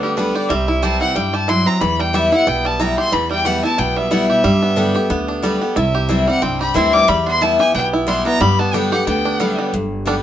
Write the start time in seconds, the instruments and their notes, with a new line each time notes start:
Already playing: upright bass D2, steel-string acoustic guitar D3, five-string banjo B3 D4 G4
0.03 five-string banjo G3, fiddle G4
0.17 steel-string acoustic guitar D3 G3 B3 G4, five-string banjo D4, fiddle B4
0.35 five-string banjo G4, fiddle D5
0.49 upright bass C2, steel-string acoustic guitar C3, five-string banjo G3, fiddle E5
0.68 five-string banjo E4
0.82 steel-string acoustic guitar E3 G3 C4 E4, five-string banjo G4, fiddle A5
1.01 five-string banjo E4, fiddle F#5
1.15 upright bass G2, steel-string acoustic guitar G2, five-string banjo G3, fiddle G5
1.33 five-string banjo G4, fiddle A5
1.48 steel-string acoustic guitar F#3, five-string banjo E4, fiddle C6
1.66 five-string banjo C4, fiddle A#5
1.81 steel-string acoustic guitar E2, upright bass E2, five-string banjo E3, fiddle B5
1.99 five-string banjo G3, fiddle G5
2.13 steel-string acoustic guitar E3 G3 B3 E4, five-string banjo G4, fiddle E5
2.32 steel-string acoustic guitar B3 E4, five-string banjo E4, fiddle F#5
2.47 upright bass B1, steel-string acoustic guitar B2, five-string banjo B3, fiddle G5
2.65 five-string banjo G3, fiddle A5
2.80 steel-string acoustic guitar E3 G3 B3 E4, five-string banjo E4, fiddle A#5
2.98 five-string banjo G4, fiddle C6
3.12 upright bass E2, steel-string acoustic guitar E2, five-string banjo E3, fiddle B5
3.30 five-string banjo G3, fiddle G5
3.45 steel-string acoustic guitar E3 G3 B3 E4, five-string banjo G4, fiddle F#5
3.63 steel-string acoustic guitar B3 E4, five-string banjo E4, fiddle A5
3.78 upright bass B1, steel-string acoustic guitar B2, five-string banjo B3, fiddle G5
3.96 five-string banjo G3, fiddle E5
4.11 steel-string acoustic guitar E3 G3 B3 E4, five-string banjo E4, fiddle F#5
4.29 five-string banjo G4, fiddle E5
4.44 steel-string acoustic guitar G2, upright bass G2, five-string banjo G3
4.62 five-string banjo B3
4.76 steel-string acoustic guitar D3 G3 B3 G4, five-string banjo D4
4.95 steel-string acoustic guitar B3 G4, five-string banjo G4
5.10 upright bass D2, steel-string acoustic guitar D3, five-string banjo B3
5.28 five-string banjo D4
5.42 steel-string acoustic guitar D3 G3 B3 G4, five-string banjo G3
5.61 five-string banjo B3, steel-string acoustic guitar B3 G4
5.76 upright bass C2, steel-string acoustic guitar C3, five-string banjo E4, fiddle E5
5.95 five-string banjo G4
6.09 steel-string acoustic guitar E3 G3 C4 E4, five-string banjo E4
6.27 five-string banjo G3, steel-string acoustic guitar C4 E4, fiddle F#5
6.42 upright bass C2, steel-string acoustic guitar G2, five-string banjo C4, fiddle G5
6.60 five-string banjo G4, fiddle B5
6.74 upright bass D2, steel-string acoustic guitar E3 G3 C4 E4, five-string banjo E4, fiddle C6
6.94 five-string banjo G3, fiddle D6
7.08 steel-string acoustic guitar E2, upright bass E2, five-string banjo G3, fiddle B5
7.27 five-string banjo B3, fiddle C6
7.41 steel-string acoustic guitar E3 G3 B3 E4, five-string banjo E4, fiddle A5
7.59 steel-string acoustic guitar B3 E4, five-string banjo G4, fiddle G#5
7.74 upright bass B1, steel-string acoustic guitar B2, five-string banjo B3, fiddle G5
7.93 five-string banjo E4
8.07 steel-string acoustic guitar E3 G3 B3 E4, five-string banjo G3, fiddle C6
8.25 five-string banjo B3, steel-string acoustic guitar B3 E4, fiddle A#5
8.40 steel-string acoustic guitar G2, upright bass G2, five-string banjo G3, fiddle B5
8.59 five-string banjo B3, fiddle A5
8.73 steel-string acoustic guitar D3 G3 B3 G4, five-string banjo D4, fiddle G5
8.92 steel-string acoustic guitar B3 G4, five-string banjo G4, fiddle F#5
9.06 upright bass D2, steel-string acoustic guitar D3, five-string banjo B3, fiddle G5
9.25 five-string banjo D4
9.40 steel-string acoustic guitar D3 G3 B3 G4, five-string banjo G3
9.58 five-string banjo B3
9.73 upright bass G1, steel-string acoustic guitar G2
10.06 steel-string acoustic guitar D3 G3 B3 G4, five-string banjo G3 B3 D4